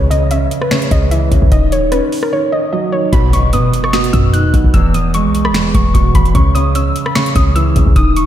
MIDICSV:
0, 0, Header, 1, 6, 480
1, 0, Start_track
1, 0, Tempo, 402685
1, 1808, Time_signature, 4, 2, 24, 8
1, 9847, End_track
2, 0, Start_track
2, 0, Title_t, "Synth pluck"
2, 0, Program_c, 0, 84
2, 126, Note_on_c, 0, 75, 90
2, 335, Note_off_c, 0, 75, 0
2, 371, Note_on_c, 0, 76, 91
2, 715, Note_off_c, 0, 76, 0
2, 732, Note_on_c, 0, 71, 83
2, 832, Note_off_c, 0, 71, 0
2, 849, Note_on_c, 0, 73, 78
2, 1057, Note_off_c, 0, 73, 0
2, 1090, Note_on_c, 0, 75, 84
2, 1298, Note_off_c, 0, 75, 0
2, 1325, Note_on_c, 0, 76, 79
2, 1778, Note_off_c, 0, 76, 0
2, 1809, Note_on_c, 0, 75, 96
2, 2017, Note_off_c, 0, 75, 0
2, 2054, Note_on_c, 0, 73, 88
2, 2260, Note_off_c, 0, 73, 0
2, 2284, Note_on_c, 0, 71, 85
2, 2632, Note_off_c, 0, 71, 0
2, 2654, Note_on_c, 0, 70, 75
2, 2753, Note_off_c, 0, 70, 0
2, 2774, Note_on_c, 0, 73, 91
2, 2980, Note_off_c, 0, 73, 0
2, 3009, Note_on_c, 0, 75, 91
2, 3217, Note_off_c, 0, 75, 0
2, 3249, Note_on_c, 0, 75, 79
2, 3457, Note_off_c, 0, 75, 0
2, 3485, Note_on_c, 0, 73, 86
2, 3695, Note_off_c, 0, 73, 0
2, 3726, Note_on_c, 0, 83, 102
2, 3935, Note_off_c, 0, 83, 0
2, 3973, Note_on_c, 0, 85, 91
2, 4179, Note_off_c, 0, 85, 0
2, 4211, Note_on_c, 0, 87, 89
2, 4555, Note_off_c, 0, 87, 0
2, 4581, Note_on_c, 0, 85, 89
2, 4677, Note_off_c, 0, 85, 0
2, 4690, Note_on_c, 0, 87, 84
2, 4898, Note_off_c, 0, 87, 0
2, 4924, Note_on_c, 0, 88, 88
2, 5134, Note_off_c, 0, 88, 0
2, 5166, Note_on_c, 0, 90, 87
2, 5619, Note_off_c, 0, 90, 0
2, 5647, Note_on_c, 0, 88, 87
2, 5856, Note_off_c, 0, 88, 0
2, 5894, Note_on_c, 0, 87, 76
2, 6100, Note_off_c, 0, 87, 0
2, 6133, Note_on_c, 0, 85, 88
2, 6476, Note_off_c, 0, 85, 0
2, 6494, Note_on_c, 0, 83, 93
2, 6593, Note_off_c, 0, 83, 0
2, 6851, Note_on_c, 0, 85, 83
2, 7058, Note_off_c, 0, 85, 0
2, 7083, Note_on_c, 0, 85, 89
2, 7294, Note_off_c, 0, 85, 0
2, 7331, Note_on_c, 0, 83, 91
2, 7538, Note_off_c, 0, 83, 0
2, 7569, Note_on_c, 0, 85, 93
2, 7777, Note_off_c, 0, 85, 0
2, 7804, Note_on_c, 0, 87, 91
2, 8015, Note_off_c, 0, 87, 0
2, 8051, Note_on_c, 0, 88, 89
2, 8395, Note_off_c, 0, 88, 0
2, 8412, Note_on_c, 0, 83, 86
2, 8512, Note_off_c, 0, 83, 0
2, 8528, Note_on_c, 0, 85, 81
2, 8736, Note_off_c, 0, 85, 0
2, 8769, Note_on_c, 0, 87, 83
2, 8977, Note_off_c, 0, 87, 0
2, 9005, Note_on_c, 0, 88, 82
2, 9458, Note_off_c, 0, 88, 0
2, 9489, Note_on_c, 0, 87, 96
2, 9697, Note_off_c, 0, 87, 0
2, 9733, Note_on_c, 0, 85, 89
2, 9847, Note_off_c, 0, 85, 0
2, 9847, End_track
3, 0, Start_track
3, 0, Title_t, "Grand piano"
3, 0, Program_c, 1, 0
3, 0, Note_on_c, 1, 49, 88
3, 87, Control_c, 1, 64, 127
3, 127, Note_off_c, 1, 49, 0
3, 127, Note_on_c, 1, 49, 80
3, 368, Note_on_c, 1, 61, 89
3, 831, Note_off_c, 1, 49, 0
3, 849, Note_on_c, 1, 49, 94
3, 1069, Note_off_c, 1, 49, 0
3, 1087, Note_on_c, 1, 49, 79
3, 1327, Note_on_c, 1, 52, 88
3, 1548, Note_off_c, 1, 49, 0
3, 1566, Note_on_c, 1, 49, 77
3, 1568, Note_off_c, 1, 61, 0
3, 1807, Note_on_c, 1, 51, 88
3, 1808, Note_off_c, 1, 49, 0
3, 1808, Note_off_c, 1, 52, 0
3, 1825, Control_c, 1, 64, 0
3, 1998, Control_c, 1, 64, 127
3, 2032, Note_off_c, 1, 51, 0
3, 2050, Note_on_c, 1, 51, 77
3, 2289, Note_on_c, 1, 61, 91
3, 2752, Note_off_c, 1, 51, 0
3, 2770, Note_on_c, 1, 51, 86
3, 2992, Note_off_c, 1, 51, 0
3, 3010, Note_on_c, 1, 51, 79
3, 3248, Note_on_c, 1, 54, 84
3, 3469, Note_off_c, 1, 51, 0
3, 3487, Note_on_c, 1, 51, 80
3, 3489, Note_off_c, 1, 61, 0
3, 3728, Note_off_c, 1, 51, 0
3, 3728, Note_off_c, 1, 54, 0
3, 3729, Note_on_c, 1, 47, 99
3, 3745, Control_c, 1, 64, 0
3, 3940, Control_c, 1, 64, 127
3, 3951, Note_off_c, 1, 47, 0
3, 3969, Note_on_c, 1, 47, 79
3, 4208, Note_on_c, 1, 59, 90
3, 4668, Note_off_c, 1, 47, 0
3, 4685, Note_on_c, 1, 47, 90
3, 4909, Note_off_c, 1, 47, 0
3, 4927, Note_on_c, 1, 47, 76
3, 5169, Note_on_c, 1, 51, 89
3, 5390, Note_off_c, 1, 47, 0
3, 5408, Note_off_c, 1, 59, 0
3, 5408, Note_on_c, 1, 47, 81
3, 5648, Note_off_c, 1, 47, 0
3, 5649, Note_off_c, 1, 51, 0
3, 5649, Note_on_c, 1, 40, 107
3, 5663, Control_c, 1, 64, 0
3, 5869, Note_off_c, 1, 40, 0
3, 5872, Control_c, 1, 64, 127
3, 5887, Note_on_c, 1, 40, 81
3, 6130, Note_on_c, 1, 56, 94
3, 6589, Note_off_c, 1, 40, 0
3, 6607, Note_on_c, 1, 40, 87
3, 6824, Note_off_c, 1, 40, 0
3, 6842, Note_on_c, 1, 40, 82
3, 7088, Note_on_c, 1, 47, 83
3, 7313, Note_off_c, 1, 40, 0
3, 7330, Note_off_c, 1, 56, 0
3, 7331, Note_on_c, 1, 40, 81
3, 7567, Note_on_c, 1, 49, 91
3, 7569, Note_off_c, 1, 47, 0
3, 7570, Note_off_c, 1, 40, 0
3, 7583, Control_c, 1, 64, 0
3, 7789, Note_off_c, 1, 49, 0
3, 7795, Control_c, 1, 64, 127
3, 7807, Note_on_c, 1, 49, 83
3, 8048, Note_on_c, 1, 61, 88
3, 8511, Note_off_c, 1, 49, 0
3, 8529, Note_on_c, 1, 49, 93
3, 8750, Note_off_c, 1, 49, 0
3, 8767, Note_on_c, 1, 49, 83
3, 9007, Note_on_c, 1, 52, 93
3, 9228, Note_off_c, 1, 49, 0
3, 9245, Note_on_c, 1, 49, 82
3, 9248, Note_off_c, 1, 61, 0
3, 9487, Note_off_c, 1, 49, 0
3, 9487, Note_on_c, 1, 51, 92
3, 9488, Note_off_c, 1, 52, 0
3, 9505, Control_c, 1, 64, 0
3, 9712, Note_off_c, 1, 51, 0
3, 9730, Note_on_c, 1, 51, 76
3, 9739, Control_c, 1, 64, 127
3, 9847, Note_off_c, 1, 51, 0
3, 9847, End_track
4, 0, Start_track
4, 0, Title_t, "808-style bass"
4, 0, Program_c, 2, 38
4, 0, Note_on_c, 2, 37, 116
4, 580, Note_off_c, 2, 37, 0
4, 1089, Note_on_c, 2, 37, 103
4, 1550, Note_off_c, 2, 37, 0
4, 1569, Note_on_c, 2, 37, 106
4, 1691, Note_off_c, 2, 37, 0
4, 1696, Note_on_c, 2, 37, 98
4, 1801, Note_off_c, 2, 37, 0
4, 1809, Note_on_c, 2, 27, 114
4, 2392, Note_off_c, 2, 27, 0
4, 3729, Note_on_c, 2, 35, 111
4, 4209, Note_on_c, 2, 47, 98
4, 4227, Note_off_c, 2, 35, 0
4, 4437, Note_off_c, 2, 47, 0
4, 4930, Note_on_c, 2, 42, 108
4, 5296, Note_on_c, 2, 39, 102
4, 5314, Note_off_c, 2, 42, 0
4, 5403, Note_off_c, 2, 39, 0
4, 5409, Note_on_c, 2, 35, 108
4, 5531, Note_off_c, 2, 35, 0
4, 5536, Note_on_c, 2, 35, 102
4, 5642, Note_off_c, 2, 35, 0
4, 5649, Note_on_c, 2, 28, 109
4, 6256, Note_on_c, 2, 35, 104
4, 6274, Note_off_c, 2, 28, 0
4, 6552, Note_on_c, 2, 28, 104
4, 6570, Note_off_c, 2, 35, 0
4, 6834, Note_off_c, 2, 28, 0
4, 6850, Note_on_c, 2, 28, 105
4, 7080, Note_off_c, 2, 28, 0
4, 7089, Note_on_c, 2, 27, 107
4, 7319, Note_off_c, 2, 27, 0
4, 7329, Note_on_c, 2, 28, 112
4, 7559, Note_off_c, 2, 28, 0
4, 7569, Note_on_c, 2, 37, 116
4, 8260, Note_off_c, 2, 37, 0
4, 8770, Note_on_c, 2, 37, 108
4, 9230, Note_off_c, 2, 37, 0
4, 9249, Note_on_c, 2, 37, 109
4, 9371, Note_off_c, 2, 37, 0
4, 9376, Note_on_c, 2, 37, 99
4, 9482, Note_off_c, 2, 37, 0
4, 9489, Note_on_c, 2, 27, 115
4, 9847, Note_off_c, 2, 27, 0
4, 9847, End_track
5, 0, Start_track
5, 0, Title_t, "Impact"
5, 0, Program_c, 3, 103
5, 3728, Note_on_c, 3, 60, 87
5, 5649, Note_off_c, 3, 60, 0
5, 9847, End_track
6, 0, Start_track
6, 0, Title_t, "Drums"
6, 133, Note_on_c, 9, 42, 69
6, 252, Note_off_c, 9, 42, 0
6, 367, Note_on_c, 9, 42, 93
6, 486, Note_off_c, 9, 42, 0
6, 612, Note_on_c, 9, 42, 72
6, 731, Note_off_c, 9, 42, 0
6, 734, Note_on_c, 9, 37, 94
6, 848, Note_on_c, 9, 26, 98
6, 848, Note_on_c, 9, 42, 62
6, 849, Note_on_c, 9, 38, 119
6, 854, Note_off_c, 9, 37, 0
6, 967, Note_off_c, 9, 26, 0
6, 967, Note_off_c, 9, 42, 0
6, 968, Note_off_c, 9, 38, 0
6, 976, Note_on_c, 9, 42, 60
6, 1088, Note_off_c, 9, 42, 0
6, 1088, Note_on_c, 9, 42, 72
6, 1089, Note_on_c, 9, 36, 91
6, 1207, Note_off_c, 9, 42, 0
6, 1209, Note_off_c, 9, 36, 0
6, 1328, Note_on_c, 9, 42, 75
6, 1448, Note_off_c, 9, 42, 0
6, 1569, Note_on_c, 9, 36, 89
6, 1569, Note_on_c, 9, 42, 76
6, 1688, Note_off_c, 9, 36, 0
6, 1688, Note_off_c, 9, 42, 0
6, 1696, Note_on_c, 9, 36, 91
6, 1808, Note_on_c, 9, 42, 78
6, 1809, Note_off_c, 9, 36, 0
6, 1809, Note_on_c, 9, 36, 117
6, 1927, Note_off_c, 9, 42, 0
6, 1928, Note_off_c, 9, 36, 0
6, 2052, Note_on_c, 9, 42, 69
6, 2171, Note_off_c, 9, 42, 0
6, 2287, Note_on_c, 9, 42, 90
6, 2288, Note_on_c, 9, 37, 64
6, 2406, Note_off_c, 9, 42, 0
6, 2408, Note_off_c, 9, 37, 0
6, 2532, Note_on_c, 9, 46, 55
6, 2652, Note_off_c, 9, 46, 0
6, 2655, Note_on_c, 9, 37, 93
6, 2774, Note_off_c, 9, 37, 0
6, 3728, Note_on_c, 9, 42, 83
6, 3729, Note_on_c, 9, 36, 120
6, 3847, Note_off_c, 9, 42, 0
6, 3848, Note_off_c, 9, 36, 0
6, 3973, Note_on_c, 9, 42, 70
6, 4092, Note_off_c, 9, 42, 0
6, 4207, Note_on_c, 9, 42, 93
6, 4326, Note_off_c, 9, 42, 0
6, 4452, Note_on_c, 9, 42, 76
6, 4571, Note_off_c, 9, 42, 0
6, 4574, Note_on_c, 9, 37, 96
6, 4688, Note_on_c, 9, 26, 98
6, 4688, Note_on_c, 9, 42, 61
6, 4689, Note_on_c, 9, 38, 120
6, 4694, Note_off_c, 9, 37, 0
6, 4807, Note_off_c, 9, 26, 0
6, 4808, Note_off_c, 9, 42, 0
6, 4809, Note_off_c, 9, 38, 0
6, 4816, Note_on_c, 9, 42, 65
6, 4929, Note_off_c, 9, 42, 0
6, 4929, Note_on_c, 9, 42, 78
6, 4930, Note_on_c, 9, 36, 94
6, 5048, Note_off_c, 9, 42, 0
6, 5049, Note_off_c, 9, 36, 0
6, 5169, Note_on_c, 9, 42, 76
6, 5288, Note_off_c, 9, 42, 0
6, 5409, Note_on_c, 9, 36, 90
6, 5410, Note_on_c, 9, 42, 79
6, 5528, Note_off_c, 9, 36, 0
6, 5529, Note_off_c, 9, 42, 0
6, 5536, Note_on_c, 9, 36, 89
6, 5648, Note_on_c, 9, 42, 81
6, 5649, Note_off_c, 9, 36, 0
6, 5649, Note_on_c, 9, 36, 120
6, 5768, Note_off_c, 9, 36, 0
6, 5768, Note_off_c, 9, 42, 0
6, 5893, Note_on_c, 9, 42, 72
6, 6012, Note_off_c, 9, 42, 0
6, 6127, Note_on_c, 9, 42, 96
6, 6247, Note_off_c, 9, 42, 0
6, 6373, Note_on_c, 9, 42, 73
6, 6492, Note_off_c, 9, 42, 0
6, 6495, Note_on_c, 9, 37, 101
6, 6609, Note_on_c, 9, 26, 98
6, 6610, Note_on_c, 9, 38, 117
6, 6611, Note_on_c, 9, 42, 75
6, 6614, Note_off_c, 9, 37, 0
6, 6728, Note_off_c, 9, 26, 0
6, 6729, Note_off_c, 9, 38, 0
6, 6730, Note_off_c, 9, 42, 0
6, 6849, Note_on_c, 9, 42, 77
6, 6850, Note_on_c, 9, 36, 92
6, 6968, Note_off_c, 9, 42, 0
6, 6969, Note_off_c, 9, 36, 0
6, 7089, Note_on_c, 9, 36, 98
6, 7090, Note_on_c, 9, 42, 80
6, 7209, Note_off_c, 9, 36, 0
6, 7209, Note_off_c, 9, 42, 0
6, 7329, Note_on_c, 9, 36, 87
6, 7330, Note_on_c, 9, 42, 79
6, 7448, Note_off_c, 9, 36, 0
6, 7449, Note_off_c, 9, 42, 0
6, 7456, Note_on_c, 9, 42, 45
6, 7568, Note_off_c, 9, 42, 0
6, 7568, Note_on_c, 9, 42, 82
6, 7569, Note_on_c, 9, 36, 125
6, 7688, Note_off_c, 9, 36, 0
6, 7688, Note_off_c, 9, 42, 0
6, 7813, Note_on_c, 9, 42, 71
6, 7932, Note_off_c, 9, 42, 0
6, 8047, Note_on_c, 9, 42, 92
6, 8167, Note_off_c, 9, 42, 0
6, 8293, Note_on_c, 9, 42, 73
6, 8412, Note_off_c, 9, 42, 0
6, 8415, Note_on_c, 9, 37, 98
6, 8528, Note_on_c, 9, 26, 100
6, 8528, Note_on_c, 9, 42, 64
6, 8529, Note_on_c, 9, 38, 121
6, 8534, Note_off_c, 9, 37, 0
6, 8647, Note_off_c, 9, 26, 0
6, 8648, Note_off_c, 9, 42, 0
6, 8649, Note_off_c, 9, 38, 0
6, 8656, Note_on_c, 9, 42, 62
6, 8768, Note_off_c, 9, 42, 0
6, 8768, Note_on_c, 9, 42, 75
6, 8770, Note_on_c, 9, 36, 92
6, 8887, Note_off_c, 9, 42, 0
6, 8889, Note_off_c, 9, 36, 0
6, 9009, Note_on_c, 9, 42, 77
6, 9128, Note_off_c, 9, 42, 0
6, 9249, Note_on_c, 9, 36, 86
6, 9249, Note_on_c, 9, 42, 76
6, 9368, Note_off_c, 9, 36, 0
6, 9368, Note_off_c, 9, 42, 0
6, 9376, Note_on_c, 9, 36, 93
6, 9488, Note_on_c, 9, 42, 81
6, 9489, Note_off_c, 9, 36, 0
6, 9489, Note_on_c, 9, 36, 123
6, 9607, Note_off_c, 9, 42, 0
6, 9608, Note_off_c, 9, 36, 0
6, 9732, Note_on_c, 9, 42, 72
6, 9847, Note_off_c, 9, 42, 0
6, 9847, End_track
0, 0, End_of_file